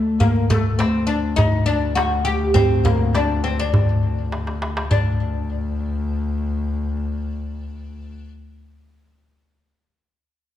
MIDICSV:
0, 0, Header, 1, 4, 480
1, 0, Start_track
1, 0, Tempo, 587659
1, 174, Time_signature, 4, 2, 24, 8
1, 8630, End_track
2, 0, Start_track
2, 0, Title_t, "Oud"
2, 0, Program_c, 0, 24
2, 0, Note_on_c, 0, 57, 82
2, 161, Note_off_c, 0, 57, 0
2, 164, Note_on_c, 0, 58, 83
2, 406, Note_off_c, 0, 58, 0
2, 409, Note_on_c, 0, 57, 80
2, 635, Note_off_c, 0, 57, 0
2, 643, Note_on_c, 0, 60, 82
2, 868, Note_off_c, 0, 60, 0
2, 872, Note_on_c, 0, 62, 81
2, 1105, Note_off_c, 0, 62, 0
2, 1114, Note_on_c, 0, 63, 87
2, 1352, Note_off_c, 0, 63, 0
2, 1355, Note_on_c, 0, 62, 83
2, 1593, Note_off_c, 0, 62, 0
2, 1596, Note_on_c, 0, 66, 87
2, 1833, Note_off_c, 0, 66, 0
2, 1836, Note_on_c, 0, 67, 86
2, 2073, Note_off_c, 0, 67, 0
2, 2076, Note_on_c, 0, 60, 87
2, 2326, Note_on_c, 0, 58, 75
2, 2333, Note_off_c, 0, 60, 0
2, 2573, Note_on_c, 0, 62, 75
2, 2578, Note_off_c, 0, 58, 0
2, 2805, Note_off_c, 0, 62, 0
2, 2808, Note_on_c, 0, 60, 74
2, 2933, Note_off_c, 0, 60, 0
2, 2937, Note_on_c, 0, 62, 68
2, 3743, Note_off_c, 0, 62, 0
2, 4009, Note_on_c, 0, 62, 73
2, 6794, Note_off_c, 0, 62, 0
2, 8630, End_track
3, 0, Start_track
3, 0, Title_t, "Double bass"
3, 0, Program_c, 1, 43
3, 0, Note_on_c, 1, 38, 58
3, 165, Note_off_c, 1, 38, 0
3, 170, Note_on_c, 1, 38, 69
3, 4003, Note_off_c, 1, 38, 0
3, 4008, Note_on_c, 1, 38, 64
3, 6601, Note_off_c, 1, 38, 0
3, 8630, End_track
4, 0, Start_track
4, 0, Title_t, "Darbuka"
4, 170, Note_on_c, 9, 64, 76
4, 252, Note_off_c, 9, 64, 0
4, 293, Note_on_c, 9, 62, 28
4, 375, Note_off_c, 9, 62, 0
4, 414, Note_on_c, 9, 64, 75
4, 495, Note_off_c, 9, 64, 0
4, 655, Note_on_c, 9, 63, 67
4, 736, Note_off_c, 9, 63, 0
4, 895, Note_on_c, 9, 62, 27
4, 977, Note_off_c, 9, 62, 0
4, 1130, Note_on_c, 9, 64, 77
4, 1211, Note_off_c, 9, 64, 0
4, 1611, Note_on_c, 9, 63, 71
4, 1693, Note_off_c, 9, 63, 0
4, 1737, Note_on_c, 9, 62, 26
4, 1819, Note_off_c, 9, 62, 0
4, 1854, Note_on_c, 9, 62, 24
4, 1936, Note_off_c, 9, 62, 0
4, 2089, Note_on_c, 9, 64, 88
4, 2171, Note_off_c, 9, 64, 0
4, 2212, Note_on_c, 9, 62, 21
4, 2294, Note_off_c, 9, 62, 0
4, 2333, Note_on_c, 9, 64, 81
4, 2414, Note_off_c, 9, 64, 0
4, 2569, Note_on_c, 9, 63, 66
4, 2651, Note_off_c, 9, 63, 0
4, 2812, Note_on_c, 9, 62, 23
4, 2894, Note_off_c, 9, 62, 0
4, 3052, Note_on_c, 9, 64, 86
4, 3134, Note_off_c, 9, 64, 0
4, 3292, Note_on_c, 9, 62, 23
4, 3373, Note_off_c, 9, 62, 0
4, 3532, Note_on_c, 9, 63, 55
4, 3613, Note_off_c, 9, 63, 0
4, 3653, Note_on_c, 9, 62, 58
4, 3735, Note_off_c, 9, 62, 0
4, 3774, Note_on_c, 9, 63, 70
4, 3856, Note_off_c, 9, 63, 0
4, 3895, Note_on_c, 9, 62, 86
4, 3977, Note_off_c, 9, 62, 0
4, 4013, Note_on_c, 9, 64, 71
4, 4095, Note_off_c, 9, 64, 0
4, 8630, End_track
0, 0, End_of_file